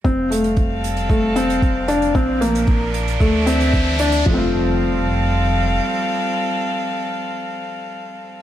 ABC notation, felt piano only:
X:1
M:4/4
L:1/8
Q:1/4=114
K:F
V:1 name="Felt piano"
C A,2 z A, C2 D | C B,2 z A, C2 D | [F,A,CF]8- | [F,A,CF]8 |]